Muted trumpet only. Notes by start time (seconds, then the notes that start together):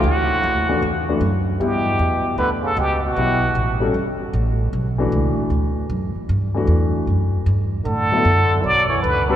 0.06 F#4
1.61 G4
2.38 B4
2.66 A4
2.80 G4
3.06 F#4
7.86 A4
8.65 D5
8.90 C#5
9.03 B4
9.29 A4